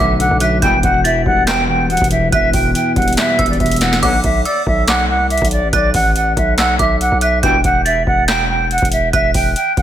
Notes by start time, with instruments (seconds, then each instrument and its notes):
Already playing: clean electric guitar D3 F#3 A3 B3
0.00 808-style bass B1, clean electric guitar B2, flute E5, synth bell D6
0.20 clean electric guitar D3, flute F#5, closed hi-hat
0.31 808-style bass B1
0.40 clean electric guitar F#3, flute E5, synth bell F#6, closed hi-hat
0.62 808-style bass E1, clean electric guitar E2, brass ensemble G2 B2 E3, flute G5, synth bell G6, kick, closed hi-hat
0.83 808-style bass E1, clean electric guitar B2, flute F#5, kick, closed hi-hat
1.04 clean electric guitar E3, flute E5, synth bell A6, closed hi-hat
1.26 808-style bass E1, clean electric guitar G3, flute F#5, kick
1.47 clean electric guitar B3, flute G5, synth bell G6, snare, clap, closed hi-hat
1.69 clean electric guitar E2, flute G5
1.90 clean electric guitar B2, flute F#5, closed hi-hat
1.97 closed hi-hat
2.01 808-style bass E1, kick, closed hi-hat
2.11 clean electric guitar E3, flute E5, closed hi-hat
2.32 808-style bass E1, clean electric guitar E2, flute E5, synth bell F#6, kick, closed hi-hat
2.53 808-style bass E1, clean electric guitar B2, flute G5, kick, open hi-hat
2.75 clean electric guitar E3, flute G5, closed hi-hat
2.96 808-style bass E1, clean electric guitar G3, flute F#5, kick, closed hi-hat
3.02 closed hi-hat
3.08 closed hi-hat
3.13 closed hi-hat
3.17 clean electric guitar B3, flute E5, snare, clap, closed hi-hat
3.39 808-style bass E1, clean electric guitar E2, synth bell E6, kick, closed hi-hat
3.46 flute D5, closed hi-hat
3.53 closed hi-hat
3.60 808-style bass E1, clean electric guitar B2, flute E5, kick, closed hi-hat
3.66 closed hi-hat
3.71 closed hi-hat
3.76 closed hi-hat
3.81 clean electric guitar E3, flute F#5, snare, closed hi-hat
3.93 snare
4.03 808-style bass B1, brass ensemble B2 D3 F#3, flute F#5, synth bell D6, kick, closed hi-hat, crash
4.24 808-style bass B1, flute E5, kick, closed hi-hat
4.45 flute D5, synth bell E6, closed hi-hat
4.67 808-style bass B1, flute E5, kick
4.88 flute F#5, synth bell D6, snare, clap, closed hi-hat
5.09 808-style bass C2, flute F#5
5.30 flute E5, closed hi-hat
5.38 closed hi-hat
5.42 808-style bass B1, kick, closed hi-hat
5.51 flute D5, closed hi-hat
5.63 808-style bass A1
5.73 808-style bass B1, flute D5, synth bell F#6, kick, closed hi-hat
5.94 808-style bass A1, flute F#5, kick, open hi-hat
6.16 flute F#5, closed hi-hat
6.37 808-style bass B1, flute E5, kick, closed hi-hat
6.58 flute F#5, synth bell E6, snare, clap, closed hi-hat
6.79 808-style bass B1, flute E5, synth bell D6, kick, closed hi-hat
7.01 flute F#5, closed hi-hat
7.12 808-style bass B1
7.21 flute E5, synth bell F#6, closed hi-hat
7.43 808-style bass E1, brass ensemble G2 B2 E3, flute G5, synth bell G6, kick, closed hi-hat
7.64 808-style bass E1, flute F#5, kick, closed hi-hat
7.85 flute E5, synth bell A6, closed hi-hat
8.07 808-style bass E1, flute F#5, kick
8.28 flute G5, synth bell G6, snare, clap, closed hi-hat
8.50 flute G5
8.71 flute F#5, closed hi-hat
8.78 closed hi-hat
8.82 808-style bass E1, kick, closed hi-hat
8.92 flute E5, closed hi-hat
9.13 808-style bass E1, flute E5, synth bell F#6, kick, closed hi-hat
9.34 808-style bass E1, flute G5, kick, open hi-hat
9.56 flute G5, closed hi-hat
9.77 808-style bass E1, flute F#5, kick, closed hi-hat